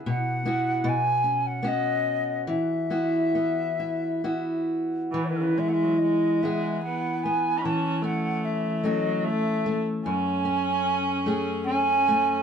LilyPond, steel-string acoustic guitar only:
\new Staff \with { instrumentName = "Steel-string acoustic guitar" } { \time 3/4 \key e \major \tempo 4 = 74 b,8 <b e' fis'>8 b,8 cis'8 <b cis' fis'>4 | e8 <b e' fis'>8 b8 e'8 <b e' fis'>4 | e8 e'4 <b e' gis'>4 b8 | e8 cis'4 <a cis' a'>4 a8 |
fis,8 cis'4 <a cis' gis'>4 a8 | }